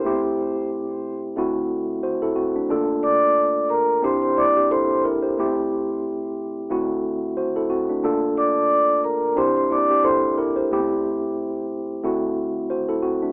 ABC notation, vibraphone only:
X:1
M:4/4
L:1/16
Q:"Swing 16ths" 1/4=90
K:Gdor
V:1 name="Vibraphone"
z16 | z2 [dd']4 [Bb]2 [cc'] [cc'] [dd']2 [cc']2 z2 | z16 | z2 [dd']4 [Bb]2 [cc'] [cc'] [dd']2 [cc']2 z2 |
z16 |]